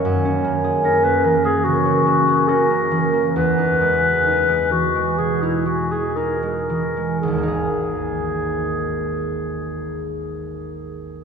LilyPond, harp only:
\new Staff \with { instrumentName = "Harp" } { \time 4/4 \key gis \minor \tempo 4 = 64 << { <fis, fis ais cis' fis'>16 cis'16 ais16 gis'16 cis'16 ais16 e16 ais16 cis16 cis'16 ais16 gis'16 cis'16 ais16 e16 ais16 | e,16 dis'16 gis16 gis'16 dis'16 gis16 e16 gis16 b,16 dis'16 gis16 gis'16 dis'16 gis16 e16 gis16~ | gis1 | } \\ { r1 | r1 | <gis,, dis, gis ais dis' gis'>1 | } >> }